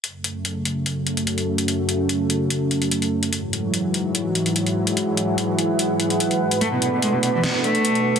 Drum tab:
HH |x-x-x-x-x-xxxx-x|x-x-x-x-x-xxxx-x|x-x-x-x-x-xxxx-x|x-x-x-x-x-xxxx-x|
SD |----------------|----------------|----------------|----------------|

HH |x-x-x-x-x-xxxx-x|
SD |--------o-------|